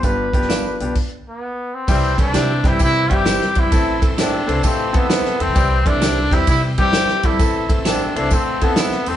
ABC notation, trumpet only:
X:1
M:4/4
L:1/8
Q:"Swing" 1/4=131
K:C
V:1 name="Trumpet"
B4 z B,2 C | C D2 E E G2 E- | E z D2 C B,2 C- | C D2 E E G2 E- |
E z D D C B,2 C |]